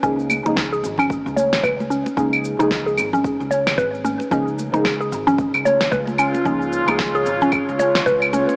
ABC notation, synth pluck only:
X:1
M:4/4
L:1/16
Q:"Swing 16ths" 1/4=112
K:Db
V:1 name="Synth pluck"
D z2 E z A2 D3 d2 _c z D2 | D z2 E z A2 D3 d2 _c z D2 | D z2 E z A2 D3 d2 _c z D2 | D z2 E z A2 D3 d2 _c z D2 |]